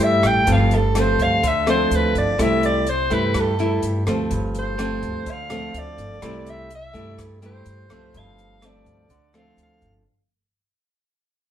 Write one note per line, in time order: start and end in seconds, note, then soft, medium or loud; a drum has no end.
0.00 0.21 G2 medium
0.00 0.45 G2 medium
0.00 0.43 G3 medium
0.00 0.43 A3 medium
0.00 0.44 E4 medium
0.00 0.28 E5 loud
0.22 0.45 A1 medium
0.22 0.54 G5 loud
0.22 cross-stick medium
0.22 closed hi-hat soft
0.47 1.15 G1 medium
0.47 1.40 G2 medium
0.47 0.78 F3 medium
0.47 0.78 A3 medium
0.47 0.78 C4 medium
0.47 kick medium
0.47 closed hi-hat soft
0.52 0.76 F5 medium
0.71 1.01 A4 medium
0.71 closed hi-hat soft
0.95 1.43 F3 soft
0.95 1.43 A3 medium
0.95 1.43 C4 medium
0.95 cross-stick medium
0.95 closed hi-hat soft
1.00 1.24 C5 medium
1.19 1.87 D2 medium
1.19 1.49 F5 loud
1.19 kick medium
1.19 closed hi-hat soft
1.43 2.36 D3 medium
1.43 kick medium
1.43 closed hi-hat soft
1.48 1.69 E5 medium
1.66 2.34 F3 medium
1.66 2.34 A3 soft
1.66 2.35 C4 medium
1.66 1.97 C5 medium
1.66 cross-stick medium
1.66 closed hi-hat soft
1.91 2.13 D2 medium
1.91 closed hi-hat soft
1.95 2.17 B4 medium
2.15 2.37 G1 medium
2.15 2.43 D5 medium
2.15 kick medium
2.15 closed hi-hat soft
2.38 3.06 C2 medium
2.38 3.32 C3 medium
2.38 2.86 G3 medium
2.38 2.86 A3 medium
2.38 2.86 E4 medium
2.38 2.64 E5 medium
2.38 kick medium
2.38 cross-stick medium
2.38 closed hi-hat soft
2.63 2.91 D5 medium
2.63 closed hi-hat soft
2.87 3.15 C5 medium
2.87 closed hi-hat soft
3.10 3.79 G2 medium
3.10 3.54 G3 medium
3.10 3.55 A3 medium
3.10 3.55 E4 medium
3.10 3.42 B4 medium
3.10 kick soft
3.10 closed hi-hat soft
3.34 4.28 G2 medium
3.34 kick medium
3.34 cross-stick medium
3.34 closed hi-hat soft
3.40 3.85 A4 medium
3.59 4.03 G3 soft
3.59 4.03 A3 medium
3.59 4.03 E4 medium
3.59 closed hi-hat soft
3.83 4.05 G2 medium
3.83 closed hi-hat soft
4.07 4.29 D2 medium
4.07 4.74 F3 medium
4.07 4.75 A3 medium
4.07 4.75 C4 medium
4.07 cross-stick medium
4.07 closed hi-hat soft
4.31 4.98 G1 medium
4.31 5.24 G2 medium
4.31 kick medium
4.31 closed hi-hat soft
4.55 closed hi-hat soft
4.59 5.33 C5 medium
4.78 5.26 F3 medium
4.78 5.26 A3 medium
4.78 5.26 C4 medium
4.78 cross-stick medium
4.78 closed hi-hat soft
5.03 5.70 D2 medium
5.03 kick soft
5.03 closed hi-hat soft
5.26 6.20 D3 soft
5.26 kick medium
5.26 closed hi-hat soft
5.31 5.80 F5 medium
5.50 6.18 F3 medium
5.50 6.18 A3 medium
5.50 6.18 C4 medium
5.50 cross-stick medium
5.50 closed hi-hat soft
5.74 5.96 D2 medium
5.74 closed hi-hat soft
5.79 6.51 D5 medium
5.97 6.20 G1 medium
5.97 closed hi-hat soft
6.22 6.90 C2 medium
6.22 7.16 C3 medium
6.22 6.70 G3 medium
6.22 6.70 A3 medium
6.22 6.70 E4 medium
6.22 kick medium
6.22 cross-stick medium
6.22 closed hi-hat soft
6.46 6.72 E5 medium
6.46 closed hi-hat soft
6.71 closed hi-hat soft
6.75 7.17 E5 medium
6.93 7.62 G2 medium
6.93 7.38 G3 medium
6.93 7.38 A3 medium
6.93 7.38 E4 medium
6.93 kick soft
6.93 closed hi-hat soft
7.18 8.11 G2 medium
7.18 kick soft
7.18 cross-stick medium
7.18 closed hi-hat soft
7.42 7.86 G3 medium
7.42 7.86 A3 medium
7.42 7.86 E4 medium
7.42 8.21 C5 medium
7.42 closed hi-hat soft
7.66 7.88 G2 medium
7.66 closed hi-hat soft
7.89 8.12 C2 medium
7.89 8.58 F3 medium
7.89 8.58 A3 medium
7.89 8.58 C4 medium
7.89 cross-stick medium
7.89 closed hi-hat soft
8.14 8.82 G1 medium
8.14 9.08 G2 medium
8.14 kick medium
8.14 closed hi-hat soft
8.19 8.68 F5 medium
8.39 closed hi-hat soft
8.61 9.09 F3 medium
8.61 9.09 A3 soft
8.61 9.10 C4 medium
8.61 cross-stick medium
8.61 closed hi-hat soft
8.66 9.36 D5 medium
8.86 9.54 D2 medium
8.86 kick soft
8.86 closed hi-hat soft
9.10 10.03 D3 soft
9.10 kick soft
9.10 closed hi-hat soft
9.34 10.02 F3 medium
9.34 10.02 A3 medium
9.34 10.02 C4 medium
9.34 9.58 F5 medium
9.34 cross-stick medium
9.34 closed hi-hat soft
9.57 9.80 D2 medium
9.57 closed hi-hat soft
9.63 9.94 F5 medium
9.82 10.04 G1 medium
9.82 kick medium
9.82 closed hi-hat soft